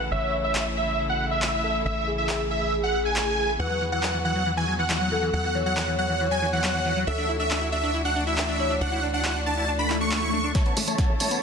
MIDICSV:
0, 0, Header, 1, 9, 480
1, 0, Start_track
1, 0, Key_signature, 3, "major"
1, 0, Tempo, 434783
1, 127, Time_signature, 4, 2, 24, 8
1, 12613, End_track
2, 0, Start_track
2, 0, Title_t, "Supersaw synth"
2, 0, Program_c, 0, 81
2, 127, Note_on_c, 0, 76, 101
2, 388, Note_off_c, 0, 76, 0
2, 487, Note_on_c, 0, 76, 93
2, 748, Note_off_c, 0, 76, 0
2, 847, Note_on_c, 0, 76, 90
2, 1108, Note_off_c, 0, 76, 0
2, 1207, Note_on_c, 0, 78, 88
2, 1381, Note_off_c, 0, 78, 0
2, 1448, Note_on_c, 0, 76, 93
2, 1952, Note_off_c, 0, 76, 0
2, 2048, Note_on_c, 0, 76, 99
2, 2308, Note_off_c, 0, 76, 0
2, 2408, Note_on_c, 0, 76, 89
2, 2668, Note_off_c, 0, 76, 0
2, 2767, Note_on_c, 0, 76, 89
2, 3028, Note_off_c, 0, 76, 0
2, 3130, Note_on_c, 0, 78, 89
2, 3302, Note_off_c, 0, 78, 0
2, 3369, Note_on_c, 0, 80, 94
2, 3872, Note_off_c, 0, 80, 0
2, 3969, Note_on_c, 0, 78, 97
2, 4229, Note_off_c, 0, 78, 0
2, 4329, Note_on_c, 0, 78, 92
2, 4589, Note_off_c, 0, 78, 0
2, 4688, Note_on_c, 0, 78, 92
2, 4948, Note_off_c, 0, 78, 0
2, 5048, Note_on_c, 0, 80, 88
2, 5221, Note_off_c, 0, 80, 0
2, 5288, Note_on_c, 0, 78, 98
2, 5792, Note_off_c, 0, 78, 0
2, 5889, Note_on_c, 0, 78, 96
2, 6149, Note_off_c, 0, 78, 0
2, 6248, Note_on_c, 0, 78, 93
2, 6509, Note_off_c, 0, 78, 0
2, 6607, Note_on_c, 0, 78, 90
2, 6868, Note_off_c, 0, 78, 0
2, 6967, Note_on_c, 0, 80, 88
2, 7141, Note_off_c, 0, 80, 0
2, 7208, Note_on_c, 0, 78, 94
2, 7711, Note_off_c, 0, 78, 0
2, 7806, Note_on_c, 0, 76, 97
2, 8067, Note_off_c, 0, 76, 0
2, 8165, Note_on_c, 0, 76, 96
2, 8427, Note_off_c, 0, 76, 0
2, 8525, Note_on_c, 0, 76, 93
2, 8787, Note_off_c, 0, 76, 0
2, 8886, Note_on_c, 0, 78, 87
2, 9060, Note_off_c, 0, 78, 0
2, 9128, Note_on_c, 0, 76, 97
2, 9632, Note_off_c, 0, 76, 0
2, 9727, Note_on_c, 0, 78, 101
2, 9988, Note_off_c, 0, 78, 0
2, 10087, Note_on_c, 0, 78, 92
2, 10348, Note_off_c, 0, 78, 0
2, 10445, Note_on_c, 0, 81, 92
2, 10707, Note_off_c, 0, 81, 0
2, 10805, Note_on_c, 0, 83, 89
2, 10980, Note_off_c, 0, 83, 0
2, 11047, Note_on_c, 0, 85, 94
2, 11551, Note_off_c, 0, 85, 0
2, 11645, Note_on_c, 0, 73, 76
2, 11646, Note_on_c, 0, 81, 99
2, 11907, Note_off_c, 0, 73, 0
2, 11907, Note_off_c, 0, 81, 0
2, 12006, Note_on_c, 0, 73, 76
2, 12007, Note_on_c, 0, 81, 93
2, 12267, Note_off_c, 0, 73, 0
2, 12268, Note_off_c, 0, 81, 0
2, 12365, Note_on_c, 0, 73, 75
2, 12366, Note_on_c, 0, 81, 91
2, 12613, Note_off_c, 0, 73, 0
2, 12613, Note_off_c, 0, 81, 0
2, 12613, End_track
3, 0, Start_track
3, 0, Title_t, "Soft synth lead"
3, 0, Program_c, 1, 80
3, 126, Note_on_c, 1, 73, 101
3, 750, Note_off_c, 1, 73, 0
3, 1808, Note_on_c, 1, 69, 90
3, 2264, Note_off_c, 1, 69, 0
3, 2287, Note_on_c, 1, 68, 106
3, 3871, Note_off_c, 1, 68, 0
3, 3968, Note_on_c, 1, 71, 102
3, 4592, Note_off_c, 1, 71, 0
3, 5647, Note_on_c, 1, 69, 90
3, 6103, Note_off_c, 1, 69, 0
3, 6127, Note_on_c, 1, 73, 111
3, 7711, Note_off_c, 1, 73, 0
3, 7807, Note_on_c, 1, 69, 103
3, 8431, Note_off_c, 1, 69, 0
3, 9487, Note_on_c, 1, 73, 93
3, 9943, Note_off_c, 1, 73, 0
3, 9966, Note_on_c, 1, 74, 107
3, 11550, Note_off_c, 1, 74, 0
3, 12613, End_track
4, 0, Start_track
4, 0, Title_t, "Acid bass"
4, 0, Program_c, 2, 38
4, 3969, Note_on_c, 2, 52, 98
4, 4058, Note_off_c, 2, 52, 0
4, 4089, Note_on_c, 2, 54, 73
4, 4177, Note_off_c, 2, 54, 0
4, 4208, Note_on_c, 2, 52, 75
4, 4267, Note_off_c, 2, 52, 0
4, 4329, Note_on_c, 2, 52, 98
4, 4418, Note_off_c, 2, 52, 0
4, 4448, Note_on_c, 2, 54, 80
4, 4537, Note_off_c, 2, 54, 0
4, 4570, Note_on_c, 2, 52, 77
4, 4628, Note_off_c, 2, 52, 0
4, 4688, Note_on_c, 2, 52, 98
4, 4777, Note_off_c, 2, 52, 0
4, 4808, Note_on_c, 2, 54, 77
4, 4897, Note_off_c, 2, 54, 0
4, 4927, Note_on_c, 2, 52, 83
4, 4987, Note_off_c, 2, 52, 0
4, 5047, Note_on_c, 2, 52, 97
4, 5136, Note_off_c, 2, 52, 0
4, 5166, Note_on_c, 2, 54, 73
4, 5256, Note_off_c, 2, 54, 0
4, 5286, Note_on_c, 2, 52, 75
4, 5346, Note_off_c, 2, 52, 0
4, 5406, Note_on_c, 2, 52, 97
4, 5496, Note_off_c, 2, 52, 0
4, 5526, Note_on_c, 2, 54, 75
4, 5616, Note_off_c, 2, 54, 0
4, 5647, Note_on_c, 2, 52, 72
4, 5707, Note_off_c, 2, 52, 0
4, 5766, Note_on_c, 2, 52, 99
4, 5856, Note_off_c, 2, 52, 0
4, 5887, Note_on_c, 2, 54, 83
4, 5976, Note_off_c, 2, 54, 0
4, 6007, Note_on_c, 2, 52, 73
4, 6067, Note_off_c, 2, 52, 0
4, 6127, Note_on_c, 2, 52, 98
4, 6217, Note_off_c, 2, 52, 0
4, 6248, Note_on_c, 2, 54, 74
4, 6337, Note_off_c, 2, 54, 0
4, 6367, Note_on_c, 2, 52, 83
4, 6427, Note_off_c, 2, 52, 0
4, 6488, Note_on_c, 2, 52, 100
4, 6577, Note_off_c, 2, 52, 0
4, 6609, Note_on_c, 2, 54, 73
4, 6698, Note_off_c, 2, 54, 0
4, 6729, Note_on_c, 2, 52, 76
4, 6788, Note_off_c, 2, 52, 0
4, 6848, Note_on_c, 2, 52, 98
4, 6937, Note_off_c, 2, 52, 0
4, 6967, Note_on_c, 2, 54, 76
4, 7057, Note_off_c, 2, 54, 0
4, 7087, Note_on_c, 2, 52, 73
4, 7147, Note_off_c, 2, 52, 0
4, 7207, Note_on_c, 2, 52, 100
4, 7296, Note_off_c, 2, 52, 0
4, 7326, Note_on_c, 2, 54, 82
4, 7416, Note_off_c, 2, 54, 0
4, 7447, Note_on_c, 2, 52, 75
4, 7507, Note_off_c, 2, 52, 0
4, 7566, Note_on_c, 2, 52, 100
4, 7656, Note_off_c, 2, 52, 0
4, 7686, Note_on_c, 2, 54, 76
4, 7776, Note_off_c, 2, 54, 0
4, 7806, Note_on_c, 2, 62, 82
4, 7866, Note_off_c, 2, 62, 0
4, 7925, Note_on_c, 2, 62, 96
4, 8016, Note_off_c, 2, 62, 0
4, 8046, Note_on_c, 2, 64, 73
4, 8136, Note_off_c, 2, 64, 0
4, 8167, Note_on_c, 2, 62, 74
4, 8227, Note_off_c, 2, 62, 0
4, 8286, Note_on_c, 2, 62, 99
4, 8376, Note_off_c, 2, 62, 0
4, 8408, Note_on_c, 2, 64, 74
4, 8497, Note_off_c, 2, 64, 0
4, 8528, Note_on_c, 2, 62, 74
4, 8587, Note_off_c, 2, 62, 0
4, 8649, Note_on_c, 2, 62, 102
4, 8737, Note_off_c, 2, 62, 0
4, 8768, Note_on_c, 2, 64, 82
4, 8857, Note_off_c, 2, 64, 0
4, 8887, Note_on_c, 2, 62, 74
4, 8947, Note_off_c, 2, 62, 0
4, 9008, Note_on_c, 2, 62, 95
4, 9097, Note_off_c, 2, 62, 0
4, 9129, Note_on_c, 2, 64, 76
4, 9217, Note_off_c, 2, 64, 0
4, 9248, Note_on_c, 2, 62, 82
4, 9307, Note_off_c, 2, 62, 0
4, 9367, Note_on_c, 2, 62, 98
4, 9457, Note_off_c, 2, 62, 0
4, 9488, Note_on_c, 2, 64, 73
4, 9577, Note_off_c, 2, 64, 0
4, 9608, Note_on_c, 2, 62, 75
4, 9667, Note_off_c, 2, 62, 0
4, 9728, Note_on_c, 2, 62, 97
4, 9817, Note_off_c, 2, 62, 0
4, 9848, Note_on_c, 2, 64, 74
4, 9937, Note_off_c, 2, 64, 0
4, 9969, Note_on_c, 2, 62, 75
4, 10028, Note_off_c, 2, 62, 0
4, 10088, Note_on_c, 2, 62, 98
4, 10177, Note_off_c, 2, 62, 0
4, 10207, Note_on_c, 2, 64, 79
4, 10297, Note_off_c, 2, 64, 0
4, 10328, Note_on_c, 2, 62, 78
4, 10387, Note_off_c, 2, 62, 0
4, 10448, Note_on_c, 2, 62, 98
4, 10537, Note_off_c, 2, 62, 0
4, 10568, Note_on_c, 2, 64, 76
4, 10657, Note_off_c, 2, 64, 0
4, 10688, Note_on_c, 2, 62, 82
4, 10747, Note_off_c, 2, 62, 0
4, 10808, Note_on_c, 2, 62, 96
4, 10897, Note_off_c, 2, 62, 0
4, 10929, Note_on_c, 2, 64, 74
4, 11017, Note_off_c, 2, 64, 0
4, 11048, Note_on_c, 2, 62, 75
4, 11107, Note_off_c, 2, 62, 0
4, 11168, Note_on_c, 2, 62, 101
4, 11257, Note_off_c, 2, 62, 0
4, 11288, Note_on_c, 2, 64, 74
4, 11377, Note_off_c, 2, 64, 0
4, 11407, Note_on_c, 2, 62, 74
4, 11466, Note_off_c, 2, 62, 0
4, 11527, Note_on_c, 2, 62, 99
4, 11616, Note_off_c, 2, 62, 0
4, 11647, Note_on_c, 2, 57, 100
4, 11737, Note_off_c, 2, 57, 0
4, 11766, Note_on_c, 2, 59, 73
4, 11856, Note_off_c, 2, 59, 0
4, 11887, Note_on_c, 2, 57, 74
4, 11947, Note_off_c, 2, 57, 0
4, 12006, Note_on_c, 2, 57, 98
4, 12096, Note_off_c, 2, 57, 0
4, 12125, Note_on_c, 2, 59, 82
4, 12215, Note_off_c, 2, 59, 0
4, 12245, Note_on_c, 2, 57, 77
4, 12306, Note_off_c, 2, 57, 0
4, 12365, Note_on_c, 2, 57, 100
4, 12455, Note_off_c, 2, 57, 0
4, 12485, Note_on_c, 2, 59, 76
4, 12575, Note_off_c, 2, 59, 0
4, 12613, End_track
5, 0, Start_track
5, 0, Title_t, "String section"
5, 0, Program_c, 3, 48
5, 0, Note_on_c, 3, 49, 73
5, 0, Note_on_c, 3, 52, 65
5, 0, Note_on_c, 3, 57, 66
5, 0, Note_on_c, 3, 64, 78
5, 3922, Note_off_c, 3, 49, 0
5, 3922, Note_off_c, 3, 57, 0
5, 3922, Note_off_c, 3, 64, 0
5, 3968, Note_on_c, 3, 54, 67
5, 3968, Note_on_c, 3, 59, 67
5, 3969, Note_on_c, 3, 66, 82
5, 7762, Note_off_c, 3, 52, 0
5, 7769, Note_off_c, 3, 54, 0
5, 7769, Note_off_c, 3, 59, 0
5, 7806, Note_on_c, 3, 52, 74
5, 7807, Note_on_c, 3, 57, 67
5, 7807, Note_on_c, 3, 62, 69
5, 11604, Note_off_c, 3, 66, 0
5, 11608, Note_off_c, 3, 52, 0
5, 11609, Note_off_c, 3, 57, 0
5, 11609, Note_off_c, 3, 62, 0
5, 11644, Note_on_c, 3, 52, 68
5, 11645, Note_on_c, 3, 57, 68
5, 11645, Note_on_c, 3, 64, 84
5, 11646, Note_on_c, 3, 49, 72
5, 12613, Note_off_c, 3, 49, 0
5, 12613, Note_off_c, 3, 52, 0
5, 12613, Note_off_c, 3, 57, 0
5, 12613, Note_off_c, 3, 64, 0
5, 12613, End_track
6, 0, Start_track
6, 0, Title_t, "Analog synth bass"
6, 0, Program_c, 4, 38
6, 127, Note_on_c, 4, 33, 87
6, 2023, Note_off_c, 4, 33, 0
6, 2047, Note_on_c, 4, 33, 86
6, 3943, Note_off_c, 4, 33, 0
6, 3967, Note_on_c, 4, 40, 87
6, 5863, Note_off_c, 4, 40, 0
6, 5888, Note_on_c, 4, 40, 85
6, 7783, Note_off_c, 4, 40, 0
6, 7807, Note_on_c, 4, 38, 88
6, 9703, Note_off_c, 4, 38, 0
6, 9725, Note_on_c, 4, 38, 87
6, 11622, Note_off_c, 4, 38, 0
6, 11886, Note_on_c, 4, 33, 96
6, 12083, Note_off_c, 4, 33, 0
6, 12246, Note_on_c, 4, 33, 93
6, 12345, Note_off_c, 4, 33, 0
6, 12367, Note_on_c, 4, 33, 79
6, 12564, Note_off_c, 4, 33, 0
6, 12613, End_track
7, 0, Start_track
7, 0, Title_t, "Riser"
7, 0, Program_c, 5, 103
7, 11646, Note_on_c, 5, 60, 77
7, 12613, Note_off_c, 5, 60, 0
7, 12613, End_track
8, 0, Start_track
8, 0, Title_t, "Swell"
8, 0, Program_c, 6, 103
8, 10686, Note_on_c, 6, 60, 73
8, 11647, Note_off_c, 6, 60, 0
8, 12613, End_track
9, 0, Start_track
9, 0, Title_t, "Drums"
9, 608, Note_on_c, 9, 39, 112
9, 718, Note_off_c, 9, 39, 0
9, 1568, Note_on_c, 9, 39, 110
9, 1679, Note_off_c, 9, 39, 0
9, 2528, Note_on_c, 9, 39, 109
9, 2639, Note_off_c, 9, 39, 0
9, 3488, Note_on_c, 9, 39, 107
9, 3598, Note_off_c, 9, 39, 0
9, 4449, Note_on_c, 9, 39, 108
9, 4559, Note_off_c, 9, 39, 0
9, 5408, Note_on_c, 9, 39, 102
9, 5519, Note_off_c, 9, 39, 0
9, 6368, Note_on_c, 9, 39, 106
9, 6479, Note_off_c, 9, 39, 0
9, 7328, Note_on_c, 9, 39, 103
9, 7439, Note_off_c, 9, 39, 0
9, 8288, Note_on_c, 9, 39, 109
9, 8398, Note_off_c, 9, 39, 0
9, 9248, Note_on_c, 9, 39, 108
9, 9358, Note_off_c, 9, 39, 0
9, 10207, Note_on_c, 9, 39, 114
9, 10318, Note_off_c, 9, 39, 0
9, 10928, Note_on_c, 9, 39, 59
9, 11038, Note_off_c, 9, 39, 0
9, 11167, Note_on_c, 9, 39, 109
9, 11277, Note_off_c, 9, 39, 0
9, 11646, Note_on_c, 9, 36, 111
9, 11647, Note_on_c, 9, 38, 48
9, 11647, Note_on_c, 9, 42, 79
9, 11647, Note_on_c, 9, 54, 30
9, 11757, Note_off_c, 9, 36, 0
9, 11757, Note_off_c, 9, 38, 0
9, 11757, Note_off_c, 9, 42, 0
9, 11757, Note_off_c, 9, 54, 0
9, 11767, Note_on_c, 9, 42, 36
9, 11877, Note_off_c, 9, 42, 0
9, 11888, Note_on_c, 9, 46, 104
9, 11888, Note_on_c, 9, 54, 69
9, 11998, Note_off_c, 9, 46, 0
9, 11998, Note_off_c, 9, 54, 0
9, 12007, Note_on_c, 9, 42, 53
9, 12007, Note_on_c, 9, 54, 39
9, 12118, Note_off_c, 9, 42, 0
9, 12118, Note_off_c, 9, 54, 0
9, 12126, Note_on_c, 9, 36, 113
9, 12127, Note_on_c, 9, 38, 49
9, 12127, Note_on_c, 9, 42, 79
9, 12127, Note_on_c, 9, 54, 29
9, 12237, Note_off_c, 9, 36, 0
9, 12238, Note_off_c, 9, 38, 0
9, 12238, Note_off_c, 9, 42, 0
9, 12238, Note_off_c, 9, 54, 0
9, 12367, Note_on_c, 9, 46, 99
9, 12367, Note_on_c, 9, 54, 69
9, 12477, Note_off_c, 9, 46, 0
9, 12477, Note_off_c, 9, 54, 0
9, 12487, Note_on_c, 9, 42, 54
9, 12487, Note_on_c, 9, 54, 37
9, 12598, Note_off_c, 9, 42, 0
9, 12598, Note_off_c, 9, 54, 0
9, 12613, End_track
0, 0, End_of_file